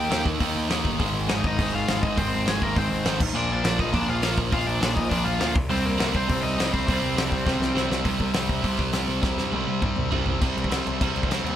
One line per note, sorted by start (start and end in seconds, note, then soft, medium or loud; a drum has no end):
0.00 0.11 D#3 loud
0.00 0.11 A#3 loud
0.00 0.11 D#4 loud
0.00 0.23 G4 medium
0.00 0.23 G5 loud
0.10 0.25 D#2 loud
0.10 0.39 D#3 loud
0.10 0.41 A#3 loud
0.10 0.41 D#4 loud
0.10 snare loud
0.10 open hi-hat medium
0.25 0.40 D#2 loud
0.25 kick loud
0.40 0.55 D#2 loud
0.40 0.70 D#3 medium
0.40 0.69 A#3 medium
0.40 0.70 D#4 loud
0.40 kick loud
0.40 open hi-hat medium
0.56 0.69 D#2 medium
0.70 0.84 D#2 loud
0.70 0.99 D#3 medium
0.70 0.99 A#3 medium
0.70 3.35 D#4 medium
0.70 snare loud
0.70 open hi-hat medium
0.85 0.99 G1 loud
0.85 kick loud
0.99 1.13 G#1 loud
0.99 1.29 G#2 loud
0.99 1.28 D#3 loud
0.99 1.28 G#3 loud
0.99 kick loud
0.99 open hi-hat medium
1.14 1.28 G#1 medium
1.29 1.43 G#1 loud
1.29 1.59 G#2 loud
1.29 1.60 D#3 loud
1.29 1.60 G#3 loud
1.29 1.44 D#4 medium
1.29 1.45 D#5 loud
1.29 snare loud
1.29 open hi-hat medium
1.44 1.58 G#1 loud
1.44 1.75 D#5 loud
1.44 kick loud
1.48 1.73 D#4 medium
1.59 1.73 G#1 loud
1.59 1.90 G#2 medium
1.59 1.89 D#3 loud
1.59 1.88 G#3 loud
1.59 kick loud
1.59 open hi-hat medium
1.73 1.87 G#1 loud
1.73 2.02 F4 medium
1.73 2.02 F5 loud
1.88 2.02 G#1 medium
1.88 2.18 G#2 medium
1.88 2.19 D#3 medium
1.88 2.20 G#3 medium
1.88 snare loud
1.88 open hi-hat medium
2.03 2.17 G#1 medium
2.03 2.16 D#4 medium
2.03 2.18 D#5 loud
2.03 kick medium
2.15 2.32 G#1 loud
2.15 2.44 G#2 loud
2.15 2.43 D#3 medium
2.15 2.43 G#3 loud
2.15 2.48 C5 loud
2.15 kick loud
2.15 open hi-hat medium
2.19 2.48 G#2 loud
2.19 2.47 D#3 loud
2.19 2.47 G#3 loud
2.19 2.46 C4 medium
2.33 2.47 G#1 medium
2.44 2.61 G#1 loud
2.44 2.75 G#2 loud
2.44 2.75 D#3 loud
2.44 2.75 G#3 loud
2.44 snare loud
2.44 open hi-hat medium
2.48 2.75 G#2 medium
2.48 2.76 D#3 loud
2.48 2.61 G#3 medium
2.48 2.77 G#3 loud
2.48 2.61 G#4 medium
2.62 2.76 G#1 medium
2.62 2.77 A#3 medium
2.62 2.77 A#4 loud
2.62 kick medium
2.76 2.91 G#1 medium
2.76 3.06 G#2 medium
2.76 3.05 D#3 medium
2.76 3.04 G#3 loud
2.76 3.19 C4 medium
2.76 3.18 C5 loud
2.76 kick loud
2.76 open hi-hat medium
2.91 3.04 G#1 medium
3.05 3.20 G#1 medium
3.05 3.20 G#2 medium
3.05 3.20 D#3 medium
3.05 3.19 G#3 medium
3.05 snare loud
3.05 open hi-hat medium
3.20 3.32 A#1 medium
3.20 kick loud
3.20 crash loud
3.33 3.48 A#1 loud
3.33 3.64 A#2 loud
3.33 3.63 F3 loud
3.33 3.62 A#3 loud
3.33 3.50 D4 medium
3.33 3.51 D5 loud
3.50 3.63 A#1 medium
3.50 3.79 D4 medium
3.50 3.78 D5 loud
3.64 3.78 A#1 medium
3.64 3.91 A#2 loud
3.64 3.92 F3 loud
3.64 3.93 A#3 loud
3.64 snare loud
3.64 open hi-hat medium
3.79 3.93 A#1 medium
3.79 3.93 D#4 medium
3.79 3.94 D#5 loud
3.79 kick medium
3.93 4.08 A#1 loud
3.93 4.23 A#2 medium
3.93 4.22 F3 medium
3.93 4.21 A#3 loud
3.93 4.07 D4 medium
3.93 4.08 D5 loud
3.93 kick loud
3.93 open hi-hat medium
4.08 4.23 A#1 medium
4.08 4.36 F4 medium
4.08 4.38 F5 loud
4.22 4.37 A#1 medium
4.22 4.51 A#2 medium
4.22 4.52 F3 medium
4.22 4.53 A#3 medium
4.22 snare loud
4.22 open hi-hat medium
4.38 4.52 A#1 medium
4.38 kick loud
4.52 4.67 A#1 loud
4.52 4.81 A#2 loud
4.52 4.81 F3 loud
4.52 4.80 A#3 loud
4.52 4.67 F4 loud
4.52 4.67 F5 loud
4.52 kick loud
4.52 open hi-hat medium
4.66 4.81 A#1 medium
4.66 4.94 D4 medium
4.66 4.96 D5 medium
4.81 4.96 A#1 loud
4.81 5.09 A#2 loud
4.81 5.10 F3 medium
4.81 5.11 A#3 loud
4.81 snare loud
4.81 open hi-hat medium
4.95 5.11 A#1 loud
4.95 5.09 D#4 medium
4.95 5.09 D#5 loud
4.95 kick medium
5.09 5.26 A#1 medium
5.09 5.41 A#2 medium
5.09 5.40 F3 loud
5.09 5.39 A#3 loud
5.09 5.24 D4 medium
5.09 5.25 D5 loud
5.09 kick loud
5.09 open hi-hat medium
5.24 5.40 A#1 loud
5.24 5.52 F4 medium
5.24 5.55 F5 loud
5.40 5.54 D2 medium
5.40 5.55 A#2 medium
5.40 5.55 F3 medium
5.40 5.54 A#3 medium
5.40 snare loud
5.40 open hi-hat medium
5.55 5.69 C2 medium
5.55 kick loud
5.70 5.84 C2 loud
5.70 6.00 C3 loud
5.70 5.99 G3 loud
5.70 5.84 C4 medium
5.70 5.99 C4 loud
5.70 5.86 C5 loud
5.70 open hi-hat medium
5.85 5.98 C2 loud
5.85 6.12 A#3 medium
5.85 6.14 A#4 medium
5.99 6.13 C2 loud
5.99 6.29 C3 loud
5.99 6.29 G3 loud
5.99 6.30 C4 loud
5.99 snare loud
5.99 open hi-hat medium
6.15 6.29 C2 loud
6.15 6.42 C4 medium
6.15 6.45 C5 medium
6.15 kick medium
6.29 6.42 C2 loud
6.29 6.59 C3 medium
6.29 6.58 G3 medium
6.29 6.57 C4 loud
6.29 kick loud
6.29 open hi-hat medium
6.42 6.57 C2 medium
6.42 6.70 D#4 medium
6.42 6.73 D#5 medium
6.58 6.73 C2 medium
6.58 6.85 C3 medium
6.58 6.86 G3 loud
6.58 6.87 C4 loud
6.58 snare loud
6.58 open hi-hat medium
6.72 6.88 C2 medium
6.72 6.86 C4 medium
6.72 6.86 C5 loud
6.72 kick medium
6.87 7.01 C2 loud
6.87 7.17 C3 loud
6.87 7.16 G3 loud
6.87 7.15 C4 loud
6.87 7.87 C4 medium
6.87 7.87 C5 medium
6.87 kick loud
6.87 open hi-hat medium
7.01 7.15 C2 medium
7.16 7.31 C2 loud
7.16 7.45 C3 loud
7.16 7.46 G3 loud
7.16 7.46 C4 loud
7.16 snare loud
7.16 open hi-hat medium
7.32 7.46 C2 loud
7.32 kick medium
7.46 7.58 C2 loud
7.46 7.75 C3 medium
7.46 7.74 G3 medium
7.46 7.73 C4 medium
7.46 kick loud
7.46 snare medium
7.59 7.74 C2 medium
7.59 snare medium
7.74 7.89 C2 medium
7.74 8.04 C3 medium
7.74 8.04 G3 medium
7.74 8.04 C4 medium
7.74 snare medium
7.90 8.05 C2 medium
7.90 snare loud
8.05 8.19 C2 loud
8.05 8.35 C3 loud
8.05 8.35 G3 loud
8.05 8.34 C4 loud
8.05 kick loud
8.05 open hi-hat medium
8.20 8.34 C2 medium
8.20 kick medium
8.34 8.49 C2 medium
8.34 8.62 C3 medium
8.34 8.63 G3 medium
8.34 8.64 C4 loud
8.34 snare loud
8.34 open hi-hat medium
8.49 8.63 C2 medium
8.49 kick medium
8.63 8.78 C2 medium
8.63 8.94 C3 medium
8.63 8.92 G3 loud
8.63 8.91 C4 loud
8.63 kick medium
8.63 open hi-hat medium
8.78 8.93 C2 medium
8.78 kick medium
8.92 9.08 C2 medium
8.92 9.21 C3 medium
8.92 9.22 G3 medium
8.92 9.22 C4 medium
8.92 snare loud
8.92 open hi-hat medium
9.08 9.22 C2 medium
9.22 9.37 C2 loud
9.22 9.52 C3 loud
9.22 9.52 G3 medium
9.22 9.51 C4 loud
9.22 kick loud
9.22 snare medium
9.37 9.51 G2 medium
9.37 snare medium
9.52 9.67 C2 loud
9.52 9.81 C3 medium
9.52 9.82 G3 loud
9.52 9.82 C4 loud
9.52 high tom medium
9.67 9.81 C2 medium
9.67 high tom medium
9.82 9.96 C2 loud
9.82 10.11 C3 medium
9.82 10.10 G3 loud
9.82 10.10 C4 loud
9.82 kick loud
9.82 mid tom medium
9.96 10.11 C2 medium
9.96 mid tom medium
10.11 10.26 C2 medium
10.11 10.40 C3 medium
10.11 10.40 G3 medium
10.11 10.40 C4 loud
10.11 floor tom loud
10.26 10.41 C2 medium
10.26 floor tom loud
10.41 10.51 C2 medium
10.41 10.71 C3 loud
10.41 10.70 G3 loud
10.41 10.70 C4 loud
10.41 kick loud
10.41 crash medium
10.57 10.66 C2 medium
10.57 crash medium
10.64 kick medium
10.71 10.80 C2 loud
10.71 10.99 C3 medium
10.71 11.00 G3 medium
10.71 11.00 C4 loud
10.71 snare loud
10.71 crash medium
10.87 10.96 C2 loud
10.87 crash medium
11.00 11.31 C3 medium
11.00 11.10 C3 loud
11.00 11.30 G3 medium
11.00 11.29 C4 loud
11.00 kick loud
11.00 crash medium
11.15 11.25 C2 medium
11.15 crash medium
11.23 kick medium
11.28 11.38 C2 medium
11.28 11.56 G3 loud
11.28 11.56 C4 loud
11.28 crash medium
11.32 11.56 C3 medium
11.32 snare loud
11.44 11.54 D#2 medium
11.44 crash medium